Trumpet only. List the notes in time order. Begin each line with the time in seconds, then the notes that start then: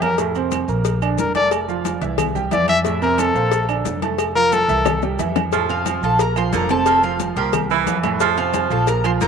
0.02 A#4
1.19 A#4
1.35 D5
2.53 D5
2.69 E5
3.02 A#4
3.20 A4
4.36 A#4
4.53 A4